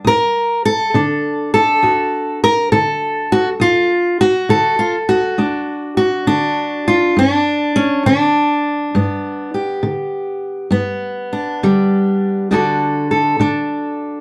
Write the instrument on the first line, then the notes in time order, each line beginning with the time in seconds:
steel-string acoustic guitar
0.05 D2 A#4
0.65 A4
0.94 D3 D4
1.54 A4
1.83 D2 F#4
2.44 A#4
2.72 D3 A4
3.32 F#4
3.60 D2 F4
4.21 F#4
4.49 D3 A4
4.79 F4
5.09 F#4
5.38 D2 D4
5.97 F#4
6.27 D3 D4
6.88 F4
7.17 G2 D4
7.76 C#4
8.06 D3 D4
8.95 G2 B3
9.54 G4
9.83 D3
10.71 G2 B3
11.33 D4
11.63 D3 G3
12.51 D2 D3 D4 F#4 A4
13.11 A4
13.40 D3 D4